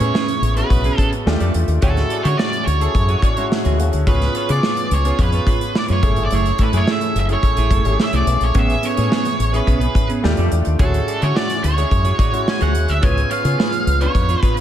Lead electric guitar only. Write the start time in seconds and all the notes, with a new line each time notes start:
Already playing: C#5
0.57 B4
0.97 A4
1.83 A4
2.23 C#5
2.37 D5
2.66 C#5
4.08 B4
4.51 D5
4.94 C#5
5.22 B4
5.78 D5
5.93 C#5
6.25 D5
6.35 C#5
6.63 B4
6.77 C#5
6.92 E5
7.20 E5
7.33 C#5
8.03 E5
8.16 D5
8.44 C#5
8.58 E5
8.86 C#5
9.56 B4
10.80 A4
11.22 C#5
11.36 D5
11.64 C#5
12.49 G#5
12.62 F#5
12.89 E5
13.03 G#5
13.31 F5
14.02 C#5
14.42 B4